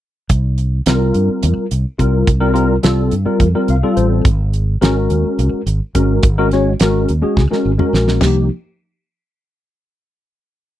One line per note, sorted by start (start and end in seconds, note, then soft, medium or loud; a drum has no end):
0.29 0.80 C2 medium
0.29 kick medium
0.29 closed hi-hat medium
0.58 closed hi-hat soft
0.86 1.11 C2 medium
0.86 1.65 G3 medium
0.86 1.65 C4 medium
0.86 1.65 F4 medium
0.86 1.65 A#4 medium
0.86 snare medium
0.86 closed hi-hat medium
1.14 1.27 G2 medium
1.14 closed hi-hat medium
1.29 muted fretless electric bass stroke soft
1.43 1.55 F2 medium
1.43 closed hi-hat medium
1.57 muted fretless electric bass stroke soft
1.71 1.84 C2 medium
1.71 closed hi-hat medium
1.99 2.24 C2 medium
1.99 2.28 G3 medium
1.99 2.28 C4 medium
1.99 2.28 F4 medium
1.99 2.29 A#4 medium
1.99 kick medium
1.99 closed hi-hat medium
2.27 2.77 C2 medium
2.27 kick loud
2.27 closed hi-hat medium
2.41 2.51 G3 medium
2.41 2.51 C4 medium
2.41 2.51 F4 medium
2.41 2.51 A#4 loud
2.54 2.75 G3 medium
2.54 2.75 C4 medium
2.54 2.74 F4 medium
2.54 2.74 A#4 medium
2.54 closed hi-hat medium
2.83 3.09 C2 medium
2.83 3.13 G3 medium
2.83 3.13 C4 medium
2.83 3.13 F4 medium
2.83 3.13 A4 medium
2.83 snare loud
2.83 closed hi-hat medium
3.11 3.25 G2 medium
3.11 closed hi-hat medium
3.25 3.46 G3 medium
3.25 3.46 C4 medium
3.25 3.46 F4 medium
3.25 3.46 A#4 medium
3.25 muted fretless electric bass stroke soft
3.40 3.53 F2 medium
3.40 kick medium
3.40 closed hi-hat medium
3.54 3.75 G3 medium
3.54 3.75 C4 medium
3.54 3.75 F4 medium
3.54 3.75 A#4 medium
3.54 muted fretless electric bass stroke soft
3.68 3.81 C2 medium
3.68 3.96 F5 medium
3.68 closed hi-hat medium
3.83 4.26 G3 medium
3.83 4.26 C4 medium
3.83 4.26 F4 medium
3.83 4.26 A4 medium
3.96 4.22 A1 medium
3.96 4.23 C5 medium
3.96 closed hi-hat medium
4.25 4.75 G#1 medium
4.25 kick loud
4.25 closed hi-hat medium
4.54 closed hi-hat medium
4.81 5.07 G#1 medium
4.81 5.60 G#3 medium
4.81 5.60 C#4 medium
4.81 5.60 F#4 medium
4.81 5.60 A#4 medium
4.81 snare loud
4.81 closed hi-hat medium
5.10 5.23 D#2 medium
5.10 closed hi-hat medium
5.24 muted fretless electric bass stroke soft
5.38 5.51 C#2 medium
5.38 closed hi-hat medium
5.53 muted fretless electric bass stroke soft
5.66 5.79 G#1 medium
5.66 closed hi-hat medium
5.95 6.20 G#1 medium
5.95 6.25 G#3 medium
5.95 6.25 C#4 medium
5.95 6.25 F#4 medium
5.95 6.25 A#4 medium
5.95 kick medium
5.95 closed hi-hat medium
6.23 6.73 G#1 medium
6.23 kick loud
6.23 closed hi-hat medium
6.38 6.48 G#3 medium
6.38 6.48 C#4 medium
6.38 6.48 F#4 medium
6.38 6.48 A#4 loud
6.51 6.72 G#3 medium
6.51 6.72 C#4 medium
6.51 6.72 F#4 medium
6.51 6.72 C#5 medium
6.51 snare soft
6.51 closed hi-hat medium
6.80 7.05 G#1 medium
6.80 7.10 G#3 medium
6.80 7.10 C#4 medium
6.80 7.11 F#4 medium
6.80 7.10 A#4 medium
6.80 snare loud
6.80 closed hi-hat medium
7.09 7.21 D#2 medium
7.09 closed hi-hat medium
7.22 7.42 G#3 medium
7.22 7.42 C#4 medium
7.22 7.42 F#4 medium
7.22 7.42 G#4 medium
7.22 muted fretless electric bass stroke soft
7.37 7.49 C#2 medium
7.37 kick medium
7.37 snare soft
7.51 7.71 G#3 medium
7.51 7.70 C#4 medium
7.51 7.71 F#4 medium
7.51 7.71 A#4 medium
7.51 muted fretless electric bass stroke soft
7.51 snare soft
7.65 7.77 G#1 medium
7.78 8.21 G#3 medium
7.78 8.21 C#4 medium
7.78 8.21 F#4 medium
7.78 8.22 A#4 medium
7.78 mid tom medium
7.93 8.18 A#1 medium
7.93 snare medium
8.08 snare medium
8.21 8.48 C2 medium
8.21 8.48 F3 medium
8.21 8.48 A#3 medium
8.21 8.48 D#4 medium
8.21 8.48 G4 medium
8.21 snare medium
8.21 floor tom medium
8.21 splash medium